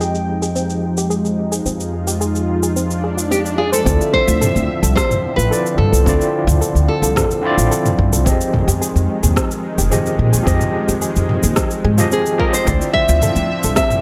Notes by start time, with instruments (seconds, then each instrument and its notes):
Already playing: upright bass F2, tine electric piano F3 C4 G4 G#4 D#5, analog synth pad F3 G#3 D#4 G5
0.01 synth arpeggio sound G#4, cabasa
0.15 cabasa
0.42 synth arpeggio sound G#4, cabasa
0.56 synth arpeggio sound C4, cabasa
0.70 cabasa
0.97 synth arpeggio sound G4, cabasa
1.10 synth arpeggio sound G#4, cabasa
1.25 cabasa
1.52 synth arpeggio sound G#4, cabasa
1.66 upright bass F2, synth arpeggio sound C4, analog synth pad F4, cabasa
1.80 cabasa
2.07 synth arpeggio sound G4, cabasa
2.21 synth arpeggio sound G#4, cabasa
2.35 cabasa
2.63 synth arpeggio sound G#4, cabasa
2.76 synth arpeggio sound C4, swell, cabasa
2.91 cabasa
3.04 synth arpeggio sound G#4
3.17 synth arpeggio sound F4, cabasa
3.31 synth arpeggio sound C4, nylon-string guitar G4, cabasa
3.46 cabasa
3.58 synth arpeggio sound F4, nylon-string guitar G#4
3.72 nylon-string guitar A4, synth arpeggio sound C5, cabasa
3.84 upright bass D2, tine electric piano D3 C4 E4 F4, analog synth pad D3 F3 C4 E5, synth arpeggio sound C4, kick, cabasa
3.89 tine electric piano D5
4.01 cabasa
4.13 nylon-string guitar C5, kick
4.27 upright bass D2, synth arpeggio sound F4, cabasa
4.41 synth arpeggio sound A4, mid tom, cabasa
4.56 upright bass D2, cabasa
4.83 upright bass C2, synth arpeggio sound A4, cabasa
4.95 synth arpeggio sound C4, nylon-string guitar C5, kick, cross-stick, cabasa
5.11 mid tom, cabasa
5.36 upright bass A1, synth arpeggio sound F4, nylon-string guitar B4, cabasa
5.50 tine electric piano D3 C4 E4 F4 D5, synth arpeggio sound A4, cabasa
5.66 cabasa
5.78 upright bass G2, nylon-string guitar A4, mid tom
5.92 upright bass C2, synth arpeggio sound A4, cabasa
6.04 upright bass D2, tine electric piano D3 C4 E4 F4, synth arpeggio sound C4, kick, cabasa
6.09 tine electric piano D5
6.21 cabasa
6.47 upright bass D2, synth arpeggio sound F4, mid tom, cabasa
6.61 synth arpeggio sound A4, cabasa
6.75 upright bass D2, cabasa
6.88 nylon-string guitar A4
7.02 upright bass C2, synth arpeggio sound A4, cabasa
7.16 synth arpeggio sound C4, kick, cross-stick, mid tom, cabasa
7.31 cabasa
7.41 tine electric piano D3 C4 E4
7.45 tine electric piano F4 D5
7.58 upright bass A1, synth arpeggio sound F4, cabasa
7.71 synth arpeggio sound A4, cabasa
7.86 mid tom, cabasa
7.99 upright bass G2, kick
8.13 upright bass C2, synth arpeggio sound A4, cabasa
8.24 upright bass F2, analog synth pad D#3 G#3, tine electric piano F3 C4 G4 G#4, synth arpeggio sound C4, kick, cabasa
8.29 tine electric piano D#5
8.41 cabasa
8.54 kick, mid tom
8.68 upright bass F2, synth arpeggio sound G4, cabasa
8.82 synth arpeggio sound G#4, cabasa
8.96 upright bass F2, cabasa
9.23 upright bass D#2, synth arpeggio sound G#4, mid tom, cabasa
9.36 synth arpeggio sound C4, kick, cross-stick, cabasa
9.51 cabasa
9.78 upright bass F1, synth arpeggio sound G4, cabasa
9.90 tine electric piano F3 C4 G4 G#4 D#5, synth arpeggio sound G#4, mid tom, cabasa
10.06 cabasa
10.19 upright bass A#2
10.33 upright bass D#2, synth arpeggio sound G#4, cabasa
10.43 tine electric piano F3 C4 G4 G#4, synth arpeggio sound C4, kick
10.47 upright bass F2, tine electric piano D#5, cabasa
10.61 mid tom, cabasa
10.88 upright bass F2, synth arpeggio sound G4, cabasa
11.02 synth arpeggio sound G#4, cabasa
11.16 upright bass F2, cabasa
11.29 mid tom
11.43 upright bass D#2, synth arpeggio sound G#4, cabasa
11.56 synth arpeggio sound C4, kick, cross-stick, cabasa
11.71 cabasa
11.85 upright bass G#2, synth arpeggio sound G#4
11.97 tine electric piano F3 C4 G4 G#4 D#5, synth arpeggio sound F4, mid tom, cabasa
12.12 synth arpeggio sound C4, nylon-string guitar G#4, cabasa
12.26 cabasa
12.38 tine electric piano F3 C4 G4 G#4 D#5, synth arpeggio sound F4, nylon-string guitar A#4, kick
12.53 synth arpeggio sound C5, nylon-string guitar C5, cabasa
12.65 upright bass D2, tine electric piano D3 C4 E4 F4, analog synth pad D3 F3 C4 E5, synth arpeggio sound C4, kick, cabasa
12.69 tine electric piano D5
12.81 cabasa
12.93 nylon-string guitar E5, kick
13.09 upright bass D2, synth arpeggio sound F4, cabasa
13.22 synth arpeggio sound A4, mid tom, cabasa
13.36 upright bass D2, cabasa
13.63 upright bass C2, synth arpeggio sound A4, cabasa
13.76 synth arpeggio sound C4, nylon-string guitar E5, kick, cross-stick, cabasa
13.90 mid tom, cabasa